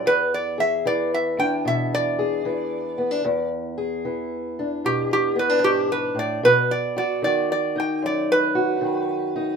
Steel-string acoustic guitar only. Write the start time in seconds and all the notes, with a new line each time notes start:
Already playing: E3
0.06 E2
0.58 G#4
0.85 E3
1.38 D4
1.65 B2
2.19 G#4
2.45 E3
2.98 B3
3.11 D4
3.25 E2
3.78 G#4
4.05 E3
4.59 D4
4.84 B2
5.36 B3
5.49 D4
5.63 G#2
6.15 A2
6.43 B2
6.96 F#4
7.22 D#3
7.76 D#4
8.02 F#2
8.55 F#4
8.81 D#3
9.36 D#4